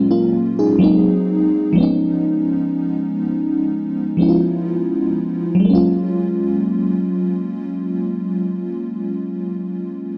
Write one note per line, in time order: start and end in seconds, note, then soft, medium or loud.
0.00 0.74 A#2 medium
0.00 0.75 F#3 medium
0.00 0.80 G#3 medium
0.00 0.82 C#4 medium
0.11 0.56 A#3 medium
0.11 0.56 F4 medium
0.59 0.83 D#4 medium
0.59 1.04 G#4 medium
0.79 1.76 F#3 medium
0.79 1.74 G#3 medium
0.79 1.77 A#3 medium
0.79 1.78 C4 medium
0.84 1.79 D#4 medium
1.73 4.13 F3 medium
1.73 4.14 G#3 medium
1.78 4.15 B3 medium
1.78 4.16 C#4 medium
1.83 4.18 D#4 medium
4.17 5.63 F3 medium
4.17 5.59 G#3 soft
4.17 5.64 B3 medium
4.17 5.65 C#4 soft
4.22 4.27 E4 soft
4.29 5.69 F4 medium
5.55 9.26 F#3 medium
5.60 9.31 G#3 medium
5.65 9.35 A#3 medium
5.70 9.41 C#4 medium
5.75 9.46 F4 medium